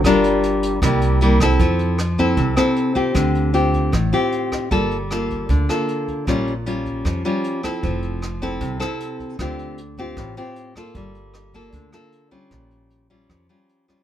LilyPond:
<<
  \new Staff \with { instrumentName = "Nylon-string guitar" } { \time 4/4 \key f \major \tempo 4 = 154 << { <d' f' bes'>2 <g bes e'>4 <g bes e'>8 <c' e' a'>8~ | <c' e' a'>4 r8 <c' e' a'>4 <c' e' a'>4 <c' f' g'>8~ | <c' f' g'>4 <c' f' g'>4 r8 <c' f' g'>4. | <bes f' a'>8 r8 <bes f' a'>4. <bes f' a'>4. |
<g des' f'>8 r8 <g des' f'>4. <g des' f'>4 <c' e' a'>8~ | <c' e' a'>4 r8 <c' e' a'>4 <c' e' a'>4. | <c' f' g'>4 r8 <c' f' g'>4 <c' f' g'>4 <bes f' a'>8~ | <bes f' a'>4. <bes f' a'>4 <bes f' a'>4 <g des' f'>8~ |
<g des' f'>4. <g des' f'>4 <g des' f'>4 <g des' f'>8 | } \\ { g2 c2 | f2 c2 | d2 a,2 | g2 d2 |
bes,2 f2 | f2 c2 | d2 a,2 | g2 d2 |
bes,2 f2 | } >> }
  \new Staff \with { instrumentName = "Trombone" } { \clef bass \time 4/4 \key f \major g2 g4. r8 | r1 | r1 | r1 |
r1 | r1 | r1 | r1 |
r1 | }
  \new Staff \with { instrumentName = "Upright bass" } { \clef bass \time 4/4 \key f \major g,,2 c,2 | f,2 c,8 r4. | d,2 a,,8 r4. | g,,2 d,8 r4. |
bes,,2 f,8 r4. | f,,2 c,8 r4. | d,2 a,,8 r4. | g,,2 d,8 r4. |
bes,,2 f,8 r4. | }
  \new DrumStaff \with { instrumentName = "Drums" } \drummode { \time 4/4 <hh bd ss>8 hh8 hh8 hh8 <hh bd ss>8 hh8 hh8 <hh bd ss>8 | <hh bd>8 hh8 <hh ss>8 <hh bd>8 <hh bd>8 <hh ss>8 hh8 <hh bd>8 | <hh bd ss>8 hh8 hh8 <hh bd>8 <hh bd ss>8 hh8 hh8 <hh bd ss>8 | <hh bd>8 hh8 <hh ss>8 <hh bd>8 <hh bd>8 <hh ss>8 hh8 <hh bd>8 |
<hh bd ss>8 hh8 hh8 <hh bd>8 <hh bd ss>8 hh8 hh8 <hh bd ss>8 | <hh bd>8 hh8 <hh ss>8 <hh bd>8 <hh bd>8 <hh ss>8 hh8 <hh bd>8 | <hh bd ss>8 hh8 hh8 <hh bd>8 <hh bd ss>8 hh8 hh8 <hh bd ss>8 | <hh bd>8 hh8 <hh ss>8 <hh bd>8 <hh bd>8 <hh ss>8 hh8 <hh bd>8 |
<hh bd ss>8 hh8 hh8 <hh bd>8 <hh bd ss>8 hh8 hh8 <bd ss>8 | }
>>